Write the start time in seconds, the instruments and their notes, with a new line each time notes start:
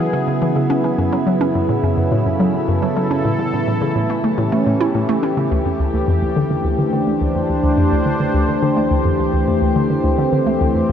Already playing: analog synth pad C#3 F#3 B3 E4 G#4
0.13 synth arpeggio sound C#3
0.28 synth arpeggio sound C#3
0.42 synth arpeggio sound E3
0.56 synth arpeggio sound C#3
0.70 synth arpeggio sound C#4
0.84 synth arpeggio sound C#4
0.98 synth arpeggio sound F#2, analog synth pad C#3
1.13 synth arpeggio sound F#3
1.27 synth arpeggio sound F#3
1.41 synth arpeggio sound C#4
1.55 synth arpeggio sound F#2
1.69 synth arpeggio sound A2
1.83 synth arpeggio sound F#2
1.97 synth arpeggio sound F#2, analog synth pad A4
2.12 synth arpeggio sound A2
2.26 synth arpeggio sound F#2
2.40 synth arpeggio sound F#3
2.54 synth arpeggio sound F#3
2.68 synth arpeggio sound F#2
2.82 synth arpeggio sound F#3
2.97 synth arpeggio sound F#3
3.11 synth arpeggio sound C#4
3.25 synth arpeggio sound A2, analog synth pad E3
3.39 synth arpeggio sound C#3
3.54 synth arpeggio sound A2
3.67 synth arpeggio sound A2
3.76 analog synth pad A3
3.82 synth arpeggio sound C#3
3.96 synth arpeggio sound A2
4.10 synth arpeggio sound A3
4.24 synth arpeggio sound A3, analog synth pad C#4 G4
4.38 synth arpeggio sound A2
4.52 synth arpeggio sound A3
4.66 synth arpeggio sound A2
4.81 synth arpeggio sound E4
4.95 synth arpeggio sound A2
5.09 synth arpeggio sound A3
5.23 synth arpeggio sound C#4
5.37 synth arpeggio sound C#3
5.51 synth arpeggio sound D2
5.65 synth arpeggio sound F2
5.80 synth arpeggio sound D2
5.94 synth arpeggio sound D2
6.08 synth arpeggio sound F2
6.22 synth arpeggio sound D2
6.29 analog synth pad D4
6.33 synth arpeggio sound D3, analog synth pad C5
6.50 synth arpeggio sound D3
6.65 synth arpeggio sound D2
6.79 synth arpeggio sound D3
6.93 synth arpeggio sound D3
7.07 synth arpeggio sound A3
7.21 synth arpeggio sound D2
7.35 synth arpeggio sound F2
7.50 synth arpeggio sound D2
7.64 synth arpeggio sound D2
7.78 synth arpeggio sound F2
7.92 synth arpeggio sound D2
8.06 synth arpeggio sound D3
8.20 synth arpeggio sound D3
8.34 synth arpeggio sound D2
8.48 synth arpeggio sound D3
8.62 synth arpeggio sound D3
8.77 synth arpeggio sound A3
8.91 synth arpeggio sound D2
9.05 synth arpeggio sound F2
9.19 synth arpeggio sound D2
9.33 synth arpeggio sound D2
9.48 synth arpeggio sound F2
9.62 synth arpeggio sound D2
9.76 synth arpeggio sound D3
9.90 synth arpeggio sound D3, analog synth pad C4
10.04 synth arpeggio sound D2
10.18 synth arpeggio sound D3
10.33 synth arpeggio sound D3
10.47 synth arpeggio sound A3
10.61 synth arpeggio sound D2
10.75 synth arpeggio sound F2